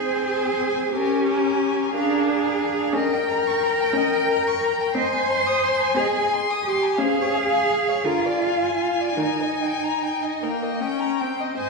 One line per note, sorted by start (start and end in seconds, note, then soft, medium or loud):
0.00 0.83 C4 medium
0.00 0.93 G#4 medium
0.00 0.25 C5 soft
0.00 0.25 G#5 soft
0.25 0.94 C5 soft
0.25 0.92 G#5 soft
0.93 1.83 C#4 medium
0.93 1.93 G4 medium
0.93 1.27 A#4 soft
0.93 1.27 G#5 soft
1.28 1.93 A#4 soft
1.28 1.93 G#5 soft
1.94 2.83 D4 medium
1.94 2.96 G#4 medium
1.94 2.28 A#4 soft
1.94 2.27 F5 soft
2.29 2.95 A#4 soft
2.29 2.94 F5 soft
2.93 3.75 C#4 medium
2.93 4.95 A#4 medium
2.93 3.15 D#5 soft
2.93 4.98 G5 medium
3.13 3.31 G5 soft
3.29 3.48 A#5 soft
3.47 3.64 C#6 soft
3.63 3.82 A#5 soft
3.80 3.98 G5 soft
3.93 4.77 C#4 medium
3.93 4.14 D#5 soft
4.13 4.33 G5 soft
4.31 4.49 A#5 soft
4.47 4.66 C#6 soft
4.64 4.82 A#5 medium
4.81 4.97 G5 soft
4.95 5.77 C4 medium
4.95 5.98 C5 medium
4.95 5.14 D#5 medium
4.95 6.98 G#5 medium
5.12 5.31 G#5 soft
5.30 5.48 C6 medium
5.47 5.65 D#6 soft
5.64 5.82 C6 medium
5.81 6.00 G#5 soft
5.95 6.79 C4 medium
5.95 6.30 G#4 medium
5.95 6.18 D#5 medium
6.16 6.35 G#5 soft
6.33 6.52 C6 medium
6.50 6.70 D#6 soft
6.64 7.01 G4 medium
6.64 6.85 C6 medium
6.83 7.01 G#5 soft
6.98 7.85 C#4 medium
6.98 8.06 G#4 medium
6.98 8.06 F5 medium
7.04 7.23 C5 medium
7.22 7.39 C#5 soft
7.38 7.56 F5 soft
7.55 7.74 G#5 soft
7.72 7.90 F5 soft
7.89 8.06 C#5 soft
8.04 8.97 D3 medium
8.04 9.17 F4 medium
8.04 8.27 A#4 medium
8.04 10.44 G#5 medium
8.25 8.45 D5 soft
8.43 8.65 F5 soft
8.64 8.83 G#5 soft
8.82 9.02 F5 soft
9.00 9.20 D5 soft
9.17 10.19 D#3 medium
9.17 10.39 D#4 medium
9.17 9.42 A#4 soft
9.41 9.63 D#5 soft
9.61 9.85 G5 soft
9.83 10.04 A#5 soft
10.03 10.24 G5 soft
10.22 10.44 D#5 soft
10.41 10.82 A#3 soft
10.41 10.64 A#4 soft
10.41 11.39 G5 soft
10.62 10.84 D#5 soft
10.81 11.22 C#4 soft
10.81 11.01 G5 soft
11.00 11.21 A#5 soft
11.20 11.58 C4 soft
11.20 11.42 G5 soft
11.41 11.57 D#5 soft
11.58 11.70 G#2 soft
11.58 11.70 C5 medium
11.58 11.70 D#5 soft
11.58 11.70 G#5 medium